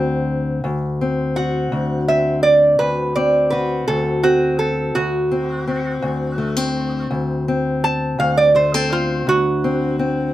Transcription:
0.00 0.63 D2 medium
0.00 0.60 C4 medium
0.00 0.61 F#4 medium
0.64 1.72 D2 medium
1.01 2.08 C4 medium
1.36 3.52 F#4 medium
1.36 2.05 F#5 medium
1.72 2.79 D2 medium
2.08 3.16 C4 medium
2.08 2.42 E5 medium
2.43 2.78 D5 medium
2.79 3.87 D2 medium
2.79 3.14 B4 medium
3.16 4.23 C4 soft
3.16 3.50 D5 medium
3.50 5.34 F#4 medium
3.50 3.85 B4 medium
3.88 4.95 D2 medium
3.88 4.22 A4 medium
4.23 4.98 C4 medium
4.23 4.58 F#4 medium
4.59 4.94 A4 medium
4.95 6.02 D2 medium
4.95 7.06 F#4 medium
5.31 5.67 C4 medium
5.67 6.38 C4 medium
6.02 7.10 D2 medium
6.38 6.56 A3 medium
6.56 7.46 C4 medium
7.11 8.18 D2 medium
7.48 8.54 C4 medium
7.84 8.18 A5 medium
8.19 9.26 D2 medium
8.19 8.36 F5 medium
8.37 8.54 D5 medium
8.55 8.74 A3 medium
8.55 8.72 C5 medium
8.74 9.27 C4 soft
8.74 8.91 A4 medium
8.93 9.26 F4 medium
9.27 10.34 D2 medium
9.27 10.34 F#4 medium
9.64 9.99 C4 medium
9.99 10.34 C4 medium

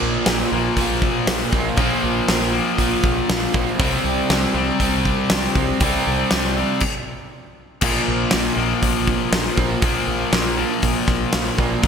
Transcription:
0.00 0.17 A#1 medium
0.00 0.55 A#2 medium
0.00 0.54 F3 loud
0.00 0.52 A#3 loud
0.26 0.42 A#1 medium
0.26 snare loud
0.26 open hi-hat medium
0.52 0.67 A#1 loud
0.52 1.76 A#2 medium
0.52 1.78 F3 medium
0.52 1.77 A#3 medium
0.76 1.07 A#1 medium
0.76 1.75 A#2 medium
0.76 1.77 F3 medium
0.76 kick medium
0.76 open hi-hat medium
0.81 1.78 A#3 medium
1.02 kick medium
1.27 1.43 A#1 medium
1.27 snare loud
1.27 open hi-hat medium
1.52 1.68 A#1 loud
1.52 1.77 A#2 medium
1.52 1.77 F3 medium
1.52 1.76 A#3 medium
1.52 kick loud
1.77 1.93 A#1 loud
1.77 2.52 A#2 medium
1.77 2.53 F3 medium
1.77 kick loud
1.77 open hi-hat medium
1.81 2.51 A#3 medium
2.04 2.19 A#1 medium
2.28 2.59 A#1 medium
2.28 snare loud
2.28 open hi-hat medium
2.52 3.79 A#2 medium
2.52 3.79 F3 medium
2.52 3.78 A#3 medium
2.78 2.94 A#1 medium
2.78 3.78 A#2 medium
2.78 3.79 F3 medium
2.78 3.79 A#3 medium
2.78 kick medium
2.78 open hi-hat medium
3.03 3.19 A#1 medium
3.03 kick loud
3.30 3.45 A#1 loud
3.30 snare loud
3.30 open hi-hat medium
3.53 3.70 A#1 loud
3.53 3.77 A#2 medium
3.53 3.78 F3 medium
3.53 3.78 A#3 medium
3.53 kick loud
3.79 3.95 C2 loud
3.79 4.58 C3 medium
3.79 4.56 G3 medium
3.79 kick loud
3.79 open hi-hat medium
3.83 4.54 C4 loud
4.04 4.20 C2 medium
4.30 4.45 C2 medium
4.30 snare loud
4.30 open hi-hat medium
4.54 4.70 C2 loud
4.54 5.79 C3 medium
4.54 5.81 G3 medium
4.54 5.80 C4 medium
4.79 5.11 C2 medium
4.79 5.79 C3 medium
4.79 5.80 G3 loud
4.79 5.81 C4 loud
4.79 kick medium
4.79 open hi-hat medium
5.05 kick medium
5.30 5.46 C2 loud
5.30 snare loud
5.30 open hi-hat medium
5.55 5.71 C2 loud
5.55 5.80 C3 medium
5.55 5.80 G3 medium
5.55 5.79 C4 medium
5.55 kick medium
5.80 5.96 C2 loud
5.80 6.55 C3 medium
5.80 6.56 G3 loud
5.80 6.56 C4 medium
5.80 kick loud
5.80 open hi-hat medium
6.07 6.22 C2 loud
6.31 6.62 C2 medium
6.31 snare loud
6.31 open hi-hat medium
6.57 6.82 C3 medium
6.57 6.82 G3 medium
6.57 6.81 C4 medium
6.80 kick medium
6.80 crash loud
7.81 7.98 A#1 medium
7.81 8.60 A#2 medium
7.81 8.58 F3 medium
7.81 8.56 A#3 loud
7.81 kick loud
7.81 crash loud
8.08 8.23 A#1 medium
8.31 8.48 A#1 medium
8.31 snare loud
8.31 open hi-hat medium
8.57 8.72 A#1 medium
8.57 9.81 A#2 medium
8.57 9.82 F3 medium
8.57 9.81 A#3 medium
8.82 9.13 A#1 loud
8.82 kick medium
8.82 open hi-hat medium
9.07 kick medium
9.32 9.48 A#1 medium
9.32 snare loud
9.32 open hi-hat medium
9.56 9.73 A#1 loud
9.56 9.80 A#2 medium
9.56 9.82 F3 medium
9.56 9.81 A#3 medium
9.56 kick medium
9.82 9.98 A#1 loud
9.82 10.56 A#2 medium
9.82 10.57 F3 medium
9.82 10.56 A#3 medium
9.82 kick loud
9.82 open hi-hat medium
10.07 10.22 A#1 medium
10.32 10.63 A#1 medium
10.32 snare loud
10.32 open hi-hat medium
10.57 11.83 A#2 medium
10.57 11.83 F3 medium
10.57 11.82 A#3 medium
10.82 10.98 A#1 medium
10.82 kick medium
10.82 open hi-hat medium
11.07 11.23 A#1 loud
11.07 kick medium
11.07 snare soft
11.33 11.49 A#1 medium
11.33 snare loud
11.33 open hi-hat medium
11.58 11.73 A#1 loud
11.58 11.83 A#2 medium
11.58 11.82 F3 medium
11.58 11.82 A#3 loud
11.58 kick medium
11.82 11.87 G#1 loud
11.82 11.87 G#2 medium
11.82 kick loud
11.82 open hi-hat medium

